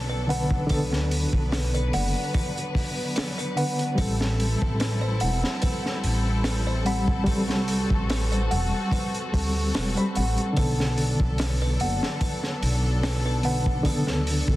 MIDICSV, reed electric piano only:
0, 0, Header, 1, 2, 480
1, 0, Start_track
1, 0, Tempo, 821918
1, 406, Time_signature, 4, 2, 24, 8
1, 8504, End_track
2, 0, Start_track
2, 0, Title_t, "Reed electric piano"
2, 0, Program_c, 0, 4
2, 0, Control_c, 0, 64, 127
2, 0, Note_on_c, 0, 50, 91
2, 0, Note_on_c, 0, 59, 87
2, 0, Note_on_c, 0, 69, 107
2, 130, Note_off_c, 0, 50, 0
2, 140, Note_off_c, 0, 59, 0
2, 148, Note_off_c, 0, 69, 0
2, 159, Note_on_c, 0, 50, 79
2, 166, Note_on_c, 0, 59, 77
2, 176, Note_on_c, 0, 71, 94
2, 376, Note_off_c, 0, 50, 0
2, 379, Note_off_c, 0, 59, 0
2, 384, Note_off_c, 0, 71, 0
2, 389, Note_on_c, 0, 50, 91
2, 407, Note_on_c, 0, 59, 85
2, 423, Note_on_c, 0, 69, 106
2, 2051, Note_off_c, 0, 50, 0
2, 2060, Note_off_c, 0, 59, 0
2, 2068, Note_off_c, 0, 69, 0
2, 2075, Note_on_c, 0, 50, 83
2, 2083, Note_on_c, 0, 59, 78
2, 2090, Note_on_c, 0, 71, 86
2, 2294, Note_off_c, 0, 50, 0
2, 2298, Note_off_c, 0, 59, 0
2, 2301, Note_off_c, 0, 71, 0
2, 2307, Note_on_c, 0, 55, 89
2, 2327, Note_on_c, 0, 60, 83
2, 2335, Control_c, 0, 64, 0
2, 2344, Note_on_c, 0, 69, 101
2, 2437, Control_c, 0, 64, 127
2, 3970, Note_off_c, 0, 55, 0
2, 3980, Note_off_c, 0, 60, 0
2, 3988, Note_off_c, 0, 69, 0
2, 3995, Note_on_c, 0, 55, 85
2, 4006, Note_on_c, 0, 60, 72
2, 4011, Note_on_c, 0, 83, 88
2, 4214, Note_off_c, 0, 55, 0
2, 4219, Note_off_c, 0, 60, 0
2, 4222, Note_off_c, 0, 83, 0
2, 4228, Note_on_c, 0, 55, 96
2, 4245, Note_on_c, 0, 60, 83
2, 4261, Note_on_c, 0, 69, 100
2, 5415, Note_off_c, 0, 55, 0
2, 5423, Note_off_c, 0, 60, 0
2, 5431, Note_off_c, 0, 69, 0
2, 5444, Note_on_c, 0, 55, 73
2, 5452, Note_on_c, 0, 60, 71
2, 5461, Note_on_c, 0, 69, 81
2, 5783, Note_off_c, 0, 55, 0
2, 5787, Note_off_c, 0, 60, 0
2, 5791, Note_off_c, 0, 69, 0
2, 5807, Note_on_c, 0, 55, 75
2, 5816, Note_on_c, 0, 60, 71
2, 5825, Note_on_c, 0, 83, 82
2, 6135, Note_off_c, 0, 55, 0
2, 6140, Note_off_c, 0, 60, 0
2, 6144, Note_off_c, 0, 83, 0
2, 6149, Note_on_c, 0, 50, 95
2, 6168, Note_on_c, 0, 59, 83
2, 6172, Control_c, 0, 64, 0
2, 6186, Note_on_c, 0, 69, 103
2, 6267, Control_c, 0, 64, 127
2, 7811, Note_off_c, 0, 50, 0
2, 7820, Note_off_c, 0, 59, 0
2, 7829, Note_off_c, 0, 69, 0
2, 7843, Note_on_c, 0, 50, 83
2, 7848, Note_on_c, 0, 59, 80
2, 7858, Note_on_c, 0, 71, 86
2, 8058, Note_off_c, 0, 50, 0
2, 8060, Note_off_c, 0, 59, 0
2, 8065, Note_off_c, 0, 71, 0
2, 8076, Note_on_c, 0, 50, 95
2, 8094, Note_on_c, 0, 59, 86
2, 8113, Note_on_c, 0, 69, 102
2, 8504, Note_off_c, 0, 50, 0
2, 8504, Note_off_c, 0, 59, 0
2, 8504, Note_off_c, 0, 69, 0
2, 8504, End_track
0, 0, End_of_file